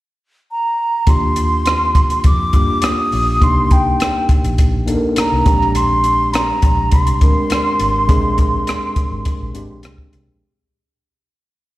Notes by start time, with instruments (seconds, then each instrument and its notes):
0.51 flute A#5
1.07 fingered electric bass D#2, tine electric piano A#3 D4 F4 G4, flute C6, kick, closed hi-hat
1.36 closed hi-hat
1.66 cross-stick, closed hi-hat
1.95 kick, closed hi-hat
2.10 closed hi-hat
2.24 fingered electric bass F2, flute D6, kick, closed hi-hat
2.53 fingered electric bass G2, tine electric piano A#3 D4 F4 G4, kick, closed hi-hat
2.82 flute D#6, cross-stick, closed hi-hat
3.12 fingered electric bass A#1, open hi-hat
3.40 fingered electric bass C2, tine electric piano A#3 D4 D#4 G4, flute C6, kick, closed hi-hat
3.71 flute G5, kick, closed hi-hat
4.00 cross-stick, closed hi-hat
4.29 muted fingered electric bass stroke, kick, closed hi-hat
4.44 fingered electric bass A#1, closed hi-hat
4.58 kick, closed hi-hat
4.86 tine electric piano A#3 D4 D#4 A4, closed hi-hat
4.95 tine electric piano A#4
5.16 flute A#5, muted fingered electric bass stroke, cross-stick, closed hi-hat
5.32 fingered electric bass C2
5.44 fingered electric bass A#1, tine electric piano G#3 C4 D4 G4, kick, closed hi-hat
5.62 cross-stick
5.75 flute C6, closed hi-hat
6.04 closed hi-hat
6.33 flute A#5, cross-stick, closed hi-hat
6.62 fingered electric bass A#1, kick, closed hi-hat
6.92 fingered electric bass C2, flute C6, kick, closed hi-hat
7.07 closed hi-hat
7.21 fingered electric bass D2, tine electric piano G#3 C4 D4 A#4, kick, closed hi-hat
7.50 cross-stick, closed hi-hat
7.80 fingered electric bass G#1, closed hi-hat
8.08 fingered electric bass A#1, tine electric piano G#3 C4 D4 G#4, kick, closed hi-hat
8.38 kick, closed hi-hat
8.67 cross-stick, closed hi-hat
8.96 muted fingered electric bass stroke, kick, closed hi-hat
9.12 fingered electric bass G#1
9.25 kick, closed hi-hat
9.41 fingered electric bass A#1
9.54 fingered electric bass G#1, tine electric piano G#3 C4 D4 G4, closed hi-hat
9.70 fingered electric bass A#1
9.83 fingered electric bass C2, cross-stick, closed hi-hat
9.98 kick
10.13 fingered electric bass C2, closed hi-hat
10.28 fingered electric bass A#1